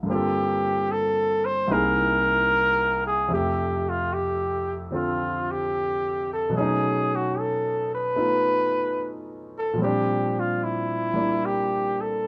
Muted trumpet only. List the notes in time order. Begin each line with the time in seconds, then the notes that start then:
0.11 G4
0.92 A4
1.45 C5
1.72 A#4
3.07 G#4
3.34 G4
3.89 F4
4.14 G4
4.95 F4
5.51 G4
6.33 A4
6.57 G#4
7.16 F#4
7.40 A4
7.95 B4
9.58 A4
9.83 G4
10.40 F4
10.64 E4
11.45 G4
12.01 A4